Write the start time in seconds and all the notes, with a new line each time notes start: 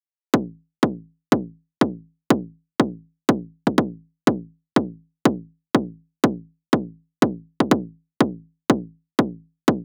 0.34 kick
0.83 kick
1.32 kick
1.81 kick
2.30 kick
2.80 kick
3.29 kick
3.67 kick
3.78 kick
4.27 kick
4.76 kick
5.25 kick
5.75 kick
6.24 kick
6.73 kick
7.22 kick
7.60 kick
7.71 kick
8.21 kick
8.70 kick
9.19 kick
9.68 kick